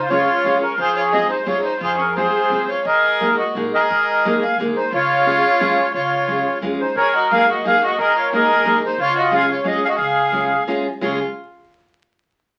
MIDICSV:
0, 0, Header, 1, 5, 480
1, 0, Start_track
1, 0, Key_signature, -5, "major"
1, 0, Tempo, 345224
1, 1085, Time_signature, 3, 2, 24, 8
1, 5897, Tempo, 338409
1, 17733, End_track
2, 0, Start_track
2, 0, Title_t, "Accordion"
2, 0, Program_c, 0, 21
2, 0, Note_on_c, 0, 72, 75
2, 131, Note_on_c, 0, 73, 104
2, 138, Note_on_c, 0, 65, 83
2, 139, Note_off_c, 0, 72, 0
2, 807, Note_off_c, 0, 65, 0
2, 869, Note_on_c, 0, 70, 77
2, 876, Note_off_c, 0, 73, 0
2, 1097, Note_off_c, 0, 70, 0
2, 1103, Note_on_c, 0, 72, 96
2, 1113, Note_on_c, 0, 68, 72
2, 1343, Note_on_c, 0, 73, 77
2, 1347, Note_off_c, 0, 72, 0
2, 1572, Note_on_c, 0, 75, 106
2, 1573, Note_off_c, 0, 73, 0
2, 1772, Note_off_c, 0, 68, 0
2, 1806, Note_on_c, 0, 72, 81
2, 1820, Note_off_c, 0, 75, 0
2, 2039, Note_on_c, 0, 73, 83
2, 2042, Note_off_c, 0, 72, 0
2, 2288, Note_on_c, 0, 72, 74
2, 2291, Note_off_c, 0, 73, 0
2, 2516, Note_off_c, 0, 72, 0
2, 2536, Note_on_c, 0, 72, 84
2, 2543, Note_on_c, 0, 68, 71
2, 2779, Note_off_c, 0, 72, 0
2, 2781, Note_on_c, 0, 70, 69
2, 2979, Note_off_c, 0, 68, 0
2, 3000, Note_on_c, 0, 68, 64
2, 3002, Note_on_c, 0, 72, 90
2, 3009, Note_off_c, 0, 70, 0
2, 3686, Note_off_c, 0, 68, 0
2, 3729, Note_on_c, 0, 73, 73
2, 3760, Note_off_c, 0, 72, 0
2, 3974, Note_off_c, 0, 73, 0
2, 3974, Note_on_c, 0, 75, 90
2, 3978, Note_on_c, 0, 70, 67
2, 4661, Note_off_c, 0, 70, 0
2, 4686, Note_off_c, 0, 75, 0
2, 4707, Note_on_c, 0, 75, 74
2, 4923, Note_off_c, 0, 75, 0
2, 5196, Note_on_c, 0, 75, 83
2, 5206, Note_on_c, 0, 70, 60
2, 6099, Note_off_c, 0, 70, 0
2, 6160, Note_on_c, 0, 77, 73
2, 6180, Note_off_c, 0, 75, 0
2, 6369, Note_off_c, 0, 77, 0
2, 6638, Note_on_c, 0, 72, 88
2, 6872, Note_off_c, 0, 72, 0
2, 6880, Note_on_c, 0, 65, 66
2, 6887, Note_on_c, 0, 73, 100
2, 8253, Note_off_c, 0, 65, 0
2, 8289, Note_off_c, 0, 73, 0
2, 8310, Note_on_c, 0, 73, 83
2, 8313, Note_on_c, 0, 65, 55
2, 9218, Note_off_c, 0, 73, 0
2, 9219, Note_off_c, 0, 65, 0
2, 9530, Note_on_c, 0, 72, 76
2, 9744, Note_off_c, 0, 72, 0
2, 9762, Note_on_c, 0, 70, 76
2, 9766, Note_on_c, 0, 73, 96
2, 10020, Note_off_c, 0, 73, 0
2, 10029, Note_on_c, 0, 75, 80
2, 10261, Note_off_c, 0, 75, 0
2, 10262, Note_on_c, 0, 77, 109
2, 10448, Note_off_c, 0, 70, 0
2, 10513, Note_off_c, 0, 77, 0
2, 10517, Note_on_c, 0, 75, 82
2, 10745, Note_off_c, 0, 75, 0
2, 10759, Note_on_c, 0, 77, 93
2, 10999, Note_off_c, 0, 77, 0
2, 11002, Note_on_c, 0, 75, 84
2, 11205, Note_off_c, 0, 75, 0
2, 11205, Note_on_c, 0, 70, 76
2, 11226, Note_on_c, 0, 75, 107
2, 11471, Note_off_c, 0, 75, 0
2, 11473, Note_on_c, 0, 73, 74
2, 11672, Note_off_c, 0, 70, 0
2, 11693, Note_on_c, 0, 70, 77
2, 11699, Note_off_c, 0, 73, 0
2, 11717, Note_on_c, 0, 75, 101
2, 12354, Note_off_c, 0, 70, 0
2, 12436, Note_off_c, 0, 75, 0
2, 12443, Note_on_c, 0, 72, 78
2, 12635, Note_on_c, 0, 65, 69
2, 12652, Note_off_c, 0, 72, 0
2, 12663, Note_on_c, 0, 73, 101
2, 12894, Note_off_c, 0, 73, 0
2, 12898, Note_on_c, 0, 75, 91
2, 13118, Note_off_c, 0, 75, 0
2, 13120, Note_on_c, 0, 77, 108
2, 13301, Note_off_c, 0, 65, 0
2, 13363, Note_on_c, 0, 73, 75
2, 13364, Note_off_c, 0, 77, 0
2, 13590, Note_off_c, 0, 73, 0
2, 13596, Note_on_c, 0, 75, 99
2, 13836, Note_on_c, 0, 77, 92
2, 13840, Note_off_c, 0, 75, 0
2, 13908, Note_on_c, 0, 75, 70
2, 13917, Note_off_c, 0, 77, 0
2, 13995, Note_on_c, 0, 68, 54
2, 14006, Note_off_c, 0, 75, 0
2, 14013, Note_on_c, 0, 77, 78
2, 14962, Note_off_c, 0, 68, 0
2, 14971, Note_off_c, 0, 77, 0
2, 15514, Note_on_c, 0, 73, 65
2, 15748, Note_off_c, 0, 73, 0
2, 17733, End_track
3, 0, Start_track
3, 0, Title_t, "Violin"
3, 0, Program_c, 1, 40
3, 128, Note_on_c, 1, 65, 78
3, 802, Note_off_c, 1, 65, 0
3, 847, Note_on_c, 1, 61, 78
3, 1063, Note_off_c, 1, 61, 0
3, 1093, Note_on_c, 1, 65, 105
3, 1318, Note_off_c, 1, 65, 0
3, 1335, Note_on_c, 1, 65, 72
3, 1540, Note_off_c, 1, 65, 0
3, 1548, Note_on_c, 1, 68, 75
3, 1784, Note_off_c, 1, 68, 0
3, 1798, Note_on_c, 1, 63, 57
3, 2014, Note_off_c, 1, 63, 0
3, 2033, Note_on_c, 1, 65, 71
3, 2258, Note_off_c, 1, 65, 0
3, 2266, Note_on_c, 1, 63, 80
3, 2486, Note_off_c, 1, 63, 0
3, 2509, Note_on_c, 1, 65, 94
3, 2741, Note_off_c, 1, 65, 0
3, 2748, Note_on_c, 1, 61, 67
3, 2969, Note_off_c, 1, 61, 0
3, 2991, Note_on_c, 1, 65, 74
3, 3681, Note_off_c, 1, 65, 0
3, 3736, Note_on_c, 1, 65, 67
3, 3954, Note_off_c, 1, 65, 0
3, 3971, Note_on_c, 1, 68, 83
3, 4657, Note_off_c, 1, 68, 0
3, 4719, Note_on_c, 1, 66, 61
3, 4930, Note_off_c, 1, 66, 0
3, 5220, Note_on_c, 1, 68, 81
3, 6106, Note_off_c, 1, 68, 0
3, 6155, Note_on_c, 1, 68, 67
3, 6367, Note_off_c, 1, 68, 0
3, 6639, Note_on_c, 1, 63, 81
3, 6850, Note_off_c, 1, 63, 0
3, 6881, Note_on_c, 1, 65, 103
3, 8254, Note_off_c, 1, 65, 0
3, 8320, Note_on_c, 1, 65, 71
3, 9223, Note_off_c, 1, 65, 0
3, 9552, Note_on_c, 1, 63, 67
3, 9756, Note_off_c, 1, 63, 0
3, 9782, Note_on_c, 1, 68, 94
3, 10005, Note_off_c, 1, 68, 0
3, 10039, Note_on_c, 1, 66, 69
3, 10244, Note_off_c, 1, 66, 0
3, 10284, Note_on_c, 1, 68, 90
3, 10501, Note_off_c, 1, 68, 0
3, 10538, Note_on_c, 1, 66, 69
3, 10734, Note_off_c, 1, 66, 0
3, 10765, Note_on_c, 1, 68, 91
3, 10979, Note_off_c, 1, 68, 0
3, 11009, Note_on_c, 1, 66, 77
3, 11208, Note_off_c, 1, 66, 0
3, 11247, Note_on_c, 1, 68, 87
3, 11458, Note_off_c, 1, 68, 0
3, 11487, Note_on_c, 1, 65, 78
3, 11685, Note_off_c, 1, 65, 0
3, 11705, Note_on_c, 1, 68, 91
3, 12360, Note_off_c, 1, 68, 0
3, 12442, Note_on_c, 1, 63, 76
3, 12631, Note_off_c, 1, 63, 0
3, 12672, Note_on_c, 1, 65, 103
3, 12877, Note_off_c, 1, 65, 0
3, 12903, Note_on_c, 1, 66, 75
3, 13100, Note_off_c, 1, 66, 0
3, 13134, Note_on_c, 1, 68, 84
3, 13348, Note_off_c, 1, 68, 0
3, 13382, Note_on_c, 1, 65, 62
3, 13578, Note_off_c, 1, 65, 0
3, 13594, Note_on_c, 1, 68, 68
3, 13815, Note_off_c, 1, 68, 0
3, 13853, Note_on_c, 1, 68, 74
3, 13908, Note_off_c, 1, 68, 0
3, 13916, Note_on_c, 1, 66, 68
3, 14003, Note_off_c, 1, 66, 0
3, 14050, Note_on_c, 1, 68, 73
3, 14989, Note_off_c, 1, 68, 0
3, 15516, Note_on_c, 1, 65, 72
3, 15749, Note_off_c, 1, 65, 0
3, 17733, End_track
4, 0, Start_track
4, 0, Title_t, "Steel-string acoustic guitar"
4, 0, Program_c, 2, 25
4, 143, Note_on_c, 2, 56, 61
4, 143, Note_on_c, 2, 68, 53
4, 148, Note_on_c, 2, 61, 58
4, 154, Note_on_c, 2, 65, 47
4, 385, Note_off_c, 2, 68, 0
4, 388, Note_off_c, 2, 56, 0
4, 390, Note_off_c, 2, 65, 0
4, 391, Note_off_c, 2, 61, 0
4, 624, Note_on_c, 2, 56, 52
4, 627, Note_on_c, 2, 61, 45
4, 627, Note_on_c, 2, 65, 58
4, 635, Note_on_c, 2, 68, 52
4, 862, Note_off_c, 2, 61, 0
4, 864, Note_off_c, 2, 56, 0
4, 866, Note_off_c, 2, 65, 0
4, 866, Note_off_c, 2, 68, 0
4, 1566, Note_on_c, 2, 56, 56
4, 1570, Note_on_c, 2, 60, 50
4, 1579, Note_on_c, 2, 65, 44
4, 1589, Note_on_c, 2, 68, 72
4, 1812, Note_off_c, 2, 60, 0
4, 1813, Note_off_c, 2, 65, 0
4, 1813, Note_off_c, 2, 68, 0
4, 1814, Note_off_c, 2, 56, 0
4, 2034, Note_on_c, 2, 56, 58
4, 2040, Note_on_c, 2, 60, 53
4, 2041, Note_on_c, 2, 68, 56
4, 2048, Note_on_c, 2, 65, 48
4, 2281, Note_off_c, 2, 68, 0
4, 2282, Note_off_c, 2, 56, 0
4, 2285, Note_off_c, 2, 60, 0
4, 2285, Note_off_c, 2, 65, 0
4, 3009, Note_on_c, 2, 56, 58
4, 3012, Note_on_c, 2, 60, 50
4, 3016, Note_on_c, 2, 65, 50
4, 3023, Note_on_c, 2, 68, 53
4, 3253, Note_off_c, 2, 56, 0
4, 3253, Note_off_c, 2, 60, 0
4, 3255, Note_off_c, 2, 68, 0
4, 3256, Note_off_c, 2, 65, 0
4, 3481, Note_on_c, 2, 56, 53
4, 3487, Note_on_c, 2, 65, 41
4, 3494, Note_on_c, 2, 60, 53
4, 3500, Note_on_c, 2, 68, 49
4, 3736, Note_off_c, 2, 56, 0
4, 3736, Note_off_c, 2, 65, 0
4, 3738, Note_off_c, 2, 68, 0
4, 3740, Note_off_c, 2, 60, 0
4, 4458, Note_on_c, 2, 56, 49
4, 4459, Note_on_c, 2, 58, 52
4, 4469, Note_on_c, 2, 63, 41
4, 4476, Note_on_c, 2, 68, 56
4, 4709, Note_off_c, 2, 58, 0
4, 4710, Note_off_c, 2, 63, 0
4, 4710, Note_off_c, 2, 68, 0
4, 4711, Note_off_c, 2, 56, 0
4, 4947, Note_on_c, 2, 56, 54
4, 4957, Note_on_c, 2, 58, 56
4, 4958, Note_on_c, 2, 63, 51
4, 4965, Note_on_c, 2, 68, 52
4, 5196, Note_off_c, 2, 56, 0
4, 5197, Note_off_c, 2, 58, 0
4, 5198, Note_off_c, 2, 68, 0
4, 5199, Note_off_c, 2, 63, 0
4, 5911, Note_on_c, 2, 56, 80
4, 5918, Note_on_c, 2, 58, 73
4, 5922, Note_on_c, 2, 68, 78
4, 5929, Note_on_c, 2, 63, 57
4, 6156, Note_off_c, 2, 58, 0
4, 6157, Note_off_c, 2, 56, 0
4, 6158, Note_off_c, 2, 63, 0
4, 6160, Note_off_c, 2, 68, 0
4, 6403, Note_on_c, 2, 56, 64
4, 6408, Note_on_c, 2, 58, 52
4, 6408, Note_on_c, 2, 63, 49
4, 6415, Note_on_c, 2, 68, 74
4, 6641, Note_off_c, 2, 63, 0
4, 6642, Note_off_c, 2, 56, 0
4, 6644, Note_off_c, 2, 58, 0
4, 6647, Note_off_c, 2, 68, 0
4, 7337, Note_on_c, 2, 56, 59
4, 7348, Note_on_c, 2, 61, 52
4, 7349, Note_on_c, 2, 65, 54
4, 7355, Note_on_c, 2, 68, 66
4, 7592, Note_off_c, 2, 56, 0
4, 7593, Note_off_c, 2, 68, 0
4, 7594, Note_off_c, 2, 61, 0
4, 7596, Note_off_c, 2, 65, 0
4, 7830, Note_on_c, 2, 56, 69
4, 7833, Note_on_c, 2, 61, 69
4, 7838, Note_on_c, 2, 65, 58
4, 7838, Note_on_c, 2, 68, 82
4, 8075, Note_off_c, 2, 61, 0
4, 8075, Note_off_c, 2, 65, 0
4, 8077, Note_off_c, 2, 56, 0
4, 8080, Note_off_c, 2, 68, 0
4, 8781, Note_on_c, 2, 56, 55
4, 8789, Note_on_c, 2, 61, 42
4, 8793, Note_on_c, 2, 65, 43
4, 8798, Note_on_c, 2, 68, 57
4, 9036, Note_off_c, 2, 56, 0
4, 9036, Note_off_c, 2, 61, 0
4, 9037, Note_off_c, 2, 68, 0
4, 9040, Note_off_c, 2, 65, 0
4, 9273, Note_on_c, 2, 56, 71
4, 9284, Note_on_c, 2, 61, 61
4, 9292, Note_on_c, 2, 65, 55
4, 9296, Note_on_c, 2, 68, 61
4, 9530, Note_off_c, 2, 56, 0
4, 9530, Note_off_c, 2, 68, 0
4, 9532, Note_off_c, 2, 61, 0
4, 9532, Note_off_c, 2, 65, 0
4, 10251, Note_on_c, 2, 56, 57
4, 10257, Note_on_c, 2, 63, 49
4, 10260, Note_on_c, 2, 58, 53
4, 10265, Note_on_c, 2, 68, 47
4, 10502, Note_off_c, 2, 63, 0
4, 10503, Note_off_c, 2, 56, 0
4, 10503, Note_off_c, 2, 68, 0
4, 10505, Note_off_c, 2, 58, 0
4, 10737, Note_on_c, 2, 56, 51
4, 10737, Note_on_c, 2, 58, 55
4, 10737, Note_on_c, 2, 68, 54
4, 10744, Note_on_c, 2, 63, 50
4, 10979, Note_off_c, 2, 68, 0
4, 10981, Note_off_c, 2, 56, 0
4, 10982, Note_off_c, 2, 58, 0
4, 10982, Note_off_c, 2, 63, 0
4, 11688, Note_on_c, 2, 56, 62
4, 11692, Note_on_c, 2, 58, 51
4, 11700, Note_on_c, 2, 63, 55
4, 11704, Note_on_c, 2, 68, 62
4, 11933, Note_off_c, 2, 58, 0
4, 11933, Note_off_c, 2, 68, 0
4, 11934, Note_off_c, 2, 56, 0
4, 11934, Note_off_c, 2, 63, 0
4, 12152, Note_on_c, 2, 58, 56
4, 12154, Note_on_c, 2, 56, 56
4, 12154, Note_on_c, 2, 68, 55
4, 12163, Note_on_c, 2, 63, 46
4, 12396, Note_off_c, 2, 68, 0
4, 12398, Note_off_c, 2, 58, 0
4, 12399, Note_off_c, 2, 56, 0
4, 12400, Note_off_c, 2, 63, 0
4, 13090, Note_on_c, 2, 56, 58
4, 13097, Note_on_c, 2, 61, 57
4, 13101, Note_on_c, 2, 68, 68
4, 13107, Note_on_c, 2, 65, 47
4, 13343, Note_off_c, 2, 61, 0
4, 13344, Note_off_c, 2, 56, 0
4, 13344, Note_off_c, 2, 65, 0
4, 13347, Note_off_c, 2, 68, 0
4, 13557, Note_on_c, 2, 56, 61
4, 13566, Note_on_c, 2, 61, 53
4, 13572, Note_on_c, 2, 65, 52
4, 13574, Note_on_c, 2, 68, 56
4, 13814, Note_off_c, 2, 68, 0
4, 13816, Note_off_c, 2, 56, 0
4, 13816, Note_off_c, 2, 61, 0
4, 13817, Note_off_c, 2, 65, 0
4, 14519, Note_on_c, 2, 56, 67
4, 14531, Note_on_c, 2, 61, 49
4, 14536, Note_on_c, 2, 65, 45
4, 14548, Note_on_c, 2, 68, 55
4, 14783, Note_off_c, 2, 56, 0
4, 14784, Note_off_c, 2, 65, 0
4, 14785, Note_off_c, 2, 68, 0
4, 14786, Note_off_c, 2, 61, 0
4, 15022, Note_on_c, 2, 56, 70
4, 15025, Note_on_c, 2, 61, 65
4, 15033, Note_on_c, 2, 65, 66
4, 15037, Note_on_c, 2, 68, 65
4, 15283, Note_off_c, 2, 61, 0
4, 15283, Note_off_c, 2, 68, 0
4, 15284, Note_off_c, 2, 56, 0
4, 15284, Note_off_c, 2, 65, 0
4, 15503, Note_on_c, 2, 56, 73
4, 15513, Note_on_c, 2, 61, 47
4, 15514, Note_on_c, 2, 65, 59
4, 15515, Note_on_c, 2, 68, 88
4, 15743, Note_off_c, 2, 65, 0
4, 15744, Note_off_c, 2, 56, 0
4, 15746, Note_off_c, 2, 61, 0
4, 15748, Note_off_c, 2, 68, 0
4, 17733, End_track
5, 0, Start_track
5, 0, Title_t, "Upright bass"
5, 0, Program_c, 3, 32
5, 0, Note_on_c, 3, 37, 80
5, 274, Note_off_c, 3, 37, 0
5, 614, Note_on_c, 3, 41, 87
5, 773, Note_off_c, 3, 41, 0
5, 1081, Note_on_c, 3, 41, 90
5, 1700, Note_off_c, 3, 41, 0
5, 2035, Note_on_c, 3, 44, 102
5, 2195, Note_off_c, 3, 44, 0
5, 2517, Note_on_c, 3, 41, 96
5, 3144, Note_off_c, 3, 41, 0
5, 3475, Note_on_c, 3, 42, 89
5, 3641, Note_off_c, 3, 42, 0
5, 3964, Note_on_c, 3, 44, 90
5, 4597, Note_off_c, 3, 44, 0
5, 4936, Note_on_c, 3, 46, 98
5, 5100, Note_off_c, 3, 46, 0
5, 5422, Note_on_c, 3, 44, 91
5, 6041, Note_off_c, 3, 44, 0
5, 6377, Note_on_c, 3, 38, 85
5, 6540, Note_off_c, 3, 38, 0
5, 6865, Note_on_c, 3, 37, 97
5, 7490, Note_off_c, 3, 37, 0
5, 7828, Note_on_c, 3, 41, 92
5, 7988, Note_off_c, 3, 41, 0
5, 8309, Note_on_c, 3, 37, 90
5, 8936, Note_off_c, 3, 37, 0
5, 9259, Note_on_c, 3, 41, 79
5, 9428, Note_off_c, 3, 41, 0
5, 9746, Note_on_c, 3, 44, 83
5, 10726, Note_off_c, 3, 44, 0
5, 10726, Note_on_c, 3, 39, 87
5, 11038, Note_off_c, 3, 39, 0
5, 11204, Note_on_c, 3, 44, 89
5, 12157, Note_off_c, 3, 44, 0
5, 12157, Note_on_c, 3, 38, 90
5, 12460, Note_off_c, 3, 38, 0
5, 12619, Note_on_c, 3, 37, 80
5, 13566, Note_off_c, 3, 37, 0
5, 13566, Note_on_c, 3, 32, 91
5, 13879, Note_off_c, 3, 32, 0
5, 14044, Note_on_c, 3, 37, 90
5, 15007, Note_off_c, 3, 37, 0
5, 15007, Note_on_c, 3, 32, 92
5, 15333, Note_off_c, 3, 32, 0
5, 15515, Note_on_c, 3, 37, 77
5, 15749, Note_off_c, 3, 37, 0
5, 17733, End_track
0, 0, End_of_file